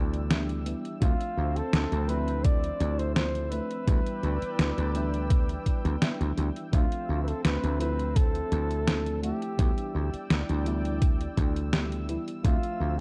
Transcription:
Already playing: D2 E3 G3 B3 D4 E4 D5 G5 E6
0.14 closed hi-hat
0.30 E3 G3 B3 D4 E4, snare, closed hi-hat
0.49 closed hi-hat
0.65 E3 G3 B3 D4 E4, closed hi-hat
0.85 closed hi-hat
1.00 D2 F3 A3 C4 D4 F4 E5, kick, closed hi-hat
1.21 closed hi-hat
1.37 D2
1.56 A4, closed hi-hat
1.73 D2, snare, closed hi-hat
1.92 D2, closed hi-hat
2.07 F3 A3 C4 D4 E4 B4, closed hi-hat
2.28 closed hi-hat
2.44 D5, kick, closed hi-hat
2.64 closed hi-hat
2.80 D2, closed hi-hat
2.99 C5, closed hi-hat
3.15 F3 A3 C4 D4 E4 C5, snare, closed hi-hat
3.35 closed hi-hat
3.51 F3 A3 C4 D4 E4 B4, closed hi-hat
3.71 closed hi-hat
3.86 D2 E3 G3 B3 D4 E4 D5 G5 E6, kick, closed hi-hat
4.06 closed hi-hat
4.23 D2, closed hi-hat
4.42 muted slap bass stroke, closed hi-hat
4.59 D2, snare, closed hi-hat
4.78 D2, closed hi-hat
4.93 E3 G3 B3 D4 E4, closed hi-hat
5.14 closed hi-hat
5.30 kick, closed hi-hat
5.49 closed hi-hat
5.66 kick, closed hi-hat
5.85 D2, closed hi-hat
6.01 E3 G3 B3 D4 E4, snare, closed hi-hat
6.21 D2, closed hi-hat
6.37 D2 E3 G3 B3 D4 E4, closed hi-hat
6.56 closed hi-hat
6.71 D2 F3 A3 C4 D4 F4 E5 E6, kick, closed hi-hat
6.92 closed hi-hat
7.09 D2
7.23 B4
7.28 A4, closed hi-hat
7.45 D2 B4, snare, closed hi-hat
7.63 D2, closed hi-hat
7.79 F3 A3 C4 D4 E4 B4, closed hi-hat
7.99 closed hi-hat
8.16 A4, kick, closed hi-hat
8.35 closed hi-hat
8.52 D2, closed hi-hat
8.71 closed hi-hat
8.87 F3 A3 C4 D4 E4, snare, closed hi-hat
9.06 closed hi-hat
9.22 F3 A3 C4 D4 E4 G4, closed hi-hat
9.42 closed hi-hat
9.57 D2 E3 G3 B3 D4 E4 D5 G5, kick, closed hi-hat
9.78 closed hi-hat
9.95 D2
10.14 muted slap bass stroke, closed hi-hat
10.30 D2, snare, closed hi-hat
10.49 D2, closed hi-hat
10.64 E3 G3 B3 D4 E4, closed hi-hat
10.85 closed hi-hat
11.02 kick, closed hi-hat
11.21 closed hi-hat
11.37 D2, kick, closed hi-hat
11.56 closed hi-hat
11.72 E3 G3 B3 D4 E4, snare, closed hi-hat
11.92 closed hi-hat
12.08 E3 G3 B3 D4 E4, closed hi-hat
12.28 closed hi-hat
12.43 D2 F3 A3 C4 D4 F4 E5, kick, closed hi-hat
12.63 closed hi-hat
12.80 D2

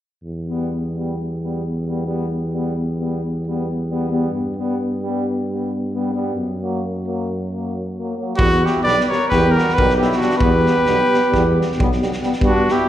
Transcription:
0.24 E2
0.49 G3 B3
0.96 G3 B3
1.43 G3 B3
1.87 G3 B3
2.07 G3 B3
2.53 G3 B3
3.00 G3 B3
3.47 G3 B3
3.90 G3 B3
4.10 G3 B3
4.31 G2
4.56 G3 B3
5.03 G3 B3
5.50 G3 B3
5.94 G3 B3
6.13 G3 B3
6.34 F#2
6.61 F#3 A#3
7.06 F#3 A#3
7.52 F#3 A#3
7.98 F#3 A#3
8.18 F#3 A#3
8.36 E2 G3 B3 F#4, kick
8.64 G3 B3 E4 G4, snare
8.83 B1 G3 B3 B4 D5
8.87 snare
9.00 B4, snare
9.04 D5
9.09 G3 B3 A#4 C#5, snare
9.29 E2 B3 G4 B4, kick, snare
9.33 G3
9.51 A#4
9.56 G3 B3 F#4, snare
9.69 snare
9.74 B1 B3 G4 B4
9.78 G3, kick
9.89 snare
9.97 B3 G4
10.01 G3 E4, snare
10.12 F#4, snare
10.20 G3 B3 D4, snare
10.30 snare
10.37 E2 G3 G4 B4, kick
10.42 B3
10.66 G3 B3, snare
10.86 B1 G3 B3, snare
11.11 G3 B3, snare
11.32 E2 G3 B3, kick, snare
11.58 G3 B3, snare
11.72 snare
11.77 B1 G3, kick
11.82 B3
11.92 snare
12.02 G3 B3, snare
12.12 snare
12.23 G3 B3, snare
12.32 snare
12.41 G2 G3 B3, kick
12.45 D4 F#4
12.68 G3 B3 E4 G4, snare

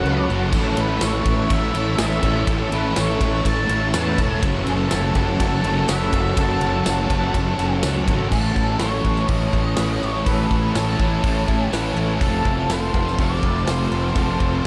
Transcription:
Already playing: C#5 F#5 A5 E6
0.03 C#2 F#2 C#3 F#3 C#4 F#4 A4 B4
0.28 F#1 C#3 F#3 F#4 A4
0.32 C#4
0.52 A1 A2 E3 A3 C#4 E4 A4 C#5 E5 E6, kick, crash
0.76 A1 A2 E3 A3 A4, ride
0.80 B4
1.01 A1 A3 C#4 E4 A4 C#5, snare, ride, tambourine
1.25 A1 E3 A3 B4, kick, ride
1.50 A1 E5, kick, ride
1.74 A1 E3 A3 C#4 E4 A4, ride
1.98 A1 A2 E3 A3 C#4 E4 A4 B4 E5, snare, ride, tambourine
2.11 snare
2.22 A1 E3 A3 C#4 E4 A4, kick, ride
2.47 A1 A2 E3 A3 C#4 E4 A4, kick, ride
2.71 A1 A2 E3 A3 A4 B4, ride
2.96 A1 A3 C#4 E4 A4, snare, ride, tambourine
3.01 C#5
3.20 A1 E3 A3 B4, kick, ride
3.45 A1 A5, kick, ride
3.69 A1 E3 A3 C#4 E4 A4, ride
3.93 E2 A2 E3 A3 C#4 E4 B4, snare, ride, tambourine
3.97 A4 A5
4.18 E1 E3 A3 C#4 E4 A4, kick, ride
4.30 G#5
4.41 F#1 F#2 C#3 F#3 C#4 F#4 A4 F#5 A5, kick, ride
4.46 A4
4.67 F#1 F#2 C#3 F#3 A4, ride
4.91 F#1 F#3 C#4 F#4 A4, snare, ride, tambourine
5.15 F#1 C#3 F#3 B4, kick, ride
5.40 F#1 A4, kick, ride
5.63 F#1 C#3 F#3 C#4 F#4 A4, ride
5.88 F#1 F#2 C#3 F#3 C#4 F#4 A4 B4 E5, snare, ride, tambourine
6.02 snare
6.12 F#1 C#3 F#3 C#4 F#4 A4, kick, ride
6.36 F#1 F#2 C#3 F#3 C#4 F#4 A4, kick, ride
6.41 A4
6.61 F#1 F#2 C#3 F#3 A4, ride
6.86 F#1 F#3 C#4 F#4 A4, snare, ride, tambourine
7.10 F#1 C#3 F#3 B4, kick, ride
7.34 F#1, kick, ride
7.59 F#1 C#3 F#3 C#4 F#4 A4, snare, ride
7.82 C#2 F#2 C#3 F#3 C#4 F#4 B4, snare, ride, tambourine
7.87 A4
8.08 G#1 C#3 F#3 C#4 F#4 A4, kick, ride
8.31 A1 A2 E3 A3 C#4 A4 C#5 G#5 A5, kick, crash
8.35 E4
8.56 A1 A4, kick
8.79 A1 A2 E3 A3 C#5, snare, open hi-hat
9.05 A1 E3 A3 B4, kick
9.16 snare
9.27 A1 A2 E3 A3 D#5, kick, open hi-hat
9.31 C#4 E4
9.53 A1 A4, kick
9.77 A1 A2 E3 A3 B4, snare, open hi-hat
10.00 A1 A4 C#5
10.25 A1 A2 E3 A3 A4 B4, kick, open hi-hat
10.29 C#4 E4
10.51 A1 A4, kick
10.74 A1 A2 E3 A3 A4, snare, open hi-hat
10.99 A1 E3 A3 B4, kick
11.23 A1 A2 E3 A3 C#4 E4, kick, open hi-hat
11.48 A1 A4, kick
11.71 A1 A2 E3 A3 B4, snare, open hi-hat
11.96 A1 A4
12.20 F1 F2 C3 F3 A3 C4 A4 F5 E6, kick, open hi-hat
12.24 F4
12.45 F1 A4, kick
12.69 F1 F2 C3 F3 C5, snare, open hi-hat
12.94 F1 C3 F3 B4, kick
13.07 snare
13.18 F1 F2 C3 F3 A3 C4 F4 D5, kick, open hi-hat
13.43 F1 A4, kick
13.66 F1 F2 C3 F3 B4 C5, snare, open hi-hat
13.91 F1 A4
14.14 F1 F2 C3 F3 A3 C4 A4 C5 D6, kick, open hi-hat
14.19 F4
14.40 F1 A4, kick

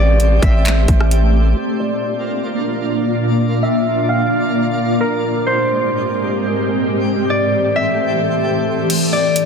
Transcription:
Already playing: A1 A3 C4 G4 C5 D5
0.20 closed hi-hat
0.42 A1 E5, kick, closed hi-hat
0.66 clap, closed hi-hat
0.88 A1, kick, closed hi-hat
1.01 cross-stick
1.11 closed hi-hat
1.57 A#2 A#3 D4 F4 D5
1.80 D5
3.63 E5
4.09 F5
5.00 A#4
5.24 G#2 G#3 C4 G4 A#4 C5
5.47 C5
7.07 A2 E3 A3 A4 C5
7.30 D5
7.76 E5
8.90 A#3 D4 F4 D5, closed hi-hat, crash
9.13 D5
9.36 closed hi-hat

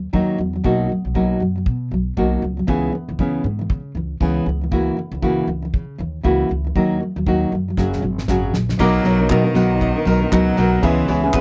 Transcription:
Already playing: F#3
0.13 D#2 D#3 F#3 A#3 D#4 F#4, kick
0.38 E2 D#3 F#3
0.53 D#3 F#3
0.64 B1 B2 F#3 A#3 D#4 F#4, kick
0.89 B2 F#3
1.05 B1 B2 F#3
1.14 B2 F#3 A#3 D#4 F#4, kick
1.40 F#2 B2 F#3
1.56 B2 F#3
1.66 B2, kick
1.91 B1 B2 F#3
2.17 B1 B2 F#3 A#3 D#4 F#4, kick
2.42 C#2 B2 F#3
2.57 B2 F#3
2.67 C#2 C#3 E3 B3 C#4 G#4, kick
2.92 C#3 E3
3.08 C#2 C#3 E3
3.19 C#3 E3 B3 C#4 G#4, kick
3.44 G#2 C#3 E3
3.59 C#3 E3
3.70 C#3, kick
3.95 C#2 C#3 E3
4.20 C#2 C#3 E3 B3 C#4 G#4, kick
4.46 C#2 C#3 E3
4.61 C#3 E3
4.71 C#3 E3 A#3 E4 F#4, kick
4.97 C#3 E3
5.11 C#2 C#3 E3
5.22 C#3 E3 A#3 E4 F#4, kick
5.47 C#2 C#3 E3
5.62 C#3 E3
5.74 C#3, kick
5.98 D#2 C#3 E3
6.23 C#2 C#3 E3 A#3 E4 F#4, kick
6.49 C#2 C#3 E3
6.64 C#3 E3
6.75 D#2 D#3 F#3 A#3 D#4 F#4, kick
7.00 D#3 F#3
7.16 D#2 D#3 F#3
7.26 D#3 F#3 A#3 D#4 F#4, kick
7.52 F#2 D#3 F#3
7.68 D#3 F#3
7.77 F#1 F#2 C#3 F#3 C#4 F#4 G#4, kick, snare
7.93 snare
8.02 G#1 F#2 C#3 F#3
8.18 snare
8.28 G#1 F#2 C#3 F#3 C#4 F#4 G#4, kick, snare
8.54 A#1 F#2 C#3 F#3, snare
8.69 F#2 C#3 F#3, snare
8.78 B1 B2 F#3 A#3 B3 D#4 F#4 A#4 D#5, kick, crash
9.04 B1 F#3 B3 D#4 F#4 A#4 C#5, tambourine
9.19 B3 D#4 A#4
9.30 B2 D#3 F#3 B3 D#4 A#4, kick, clap
9.44 B3 D#4 A#4
9.54 B1 F#3 B3 D#4 A#4 F#5, tambourine
9.81 D#4, kick
9.96 B3 D#4 A#4
10.05 B1 F#3 B3 D#4 A#4, tambourine
10.21 B3 D#4 A#4
10.32 C#2 B2 F#3 B3 D#4 A#4 F#5, kick, clap
10.56 B1 F#3 B3 D#4 F#4 A#4 F#5, tambourine
10.82 C#2 C#3 E3 G#3 B3 C#4 G#4 B4 E5, kick
11.07 C#2 E3 B3 C#4 E4 G#4 B4 C#5, tambourine
11.23 B3 C#4 G#4
11.33 C#3 E3 B3 C#4 G#4 B4, kick, clap

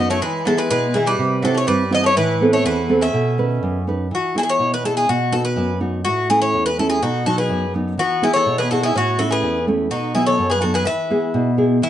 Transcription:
Already playing: F#2 B3 D#5
0.00 D#4 F#4
0.10 A3 C#5
0.22 E3 G#3 B4
0.45 F#3 B3 E4 G#4 A4
0.57 G#3 B4
0.70 B2 G#3 B4
0.94 E3 B3 E4 G#4
1.06 G3 B4
1.19 C3
1.42 F#3 C4 E4 G4 A4
1.54 A3 C#5
1.67 G2 G3 B4
1.90 B3 C4 E4 G4
1.95 D#5
2.04 A3 C#5
2.16 A2 E3 B4
2.41 B3 C4 A4
2.53 A3 C#5
2.64 E2 E3 B4
2.89 B3 C4 A4
3.01 C#4 E5
3.14 B2
3.38 D#3 C#4 B4
3.63 F#2
3.87 C#4 D#4 B4
4.11 E3 F#4
4.35 B3 E4 G#4
4.39 G#4 A4
4.49 C#5
4.59 B2
4.74 B4
4.84 B3 E4 G#4 A4
4.97 G#4
5.09 B2 F#4
5.32 B3 D#4 F#4 A4
5.45 B4
5.56 F#2
5.80 B3 D#4 F#4
6.05 A2 F#4
6.30 A3 C#4 E4 G#4
6.42 C#5
6.54 E2
6.66 B4
6.78 A3 C#4 E4 A4
6.90 G#4
7.02 B2 D#4 F#4
7.26 F#3 B3 D#4 F#4 A4
7.38 G#4 B4
7.49 F#2
7.74 F#3 B3 D#4
7.98 E3 B3 F#4
8.22 B3 E4 G#4
8.34 A4 C#5
8.46 B2
8.58 G#4 B4
8.71 B3 E4 F#4 G#4 A4
8.83 E4 G#4
8.95 A2 C#4 F#4
9.19 A3 C#4 E4 F#4 A4
9.31 G#4 B4
9.43 E2
9.67 A3 C#4 E4
9.90 B2 D#4 F#4
10.15 F#3 B3 D#4 E4 G#4
10.26 A4 C#5
10.39 F#2
10.50 G#4 B4
10.61 F#3 B3 D#4 F#4 A4
10.74 G#4 B4
10.85 E3 B4 E5
11.10 B3 E4 G#4
11.34 B2
11.57 B3 E4 G#4
11.82 E3 E4

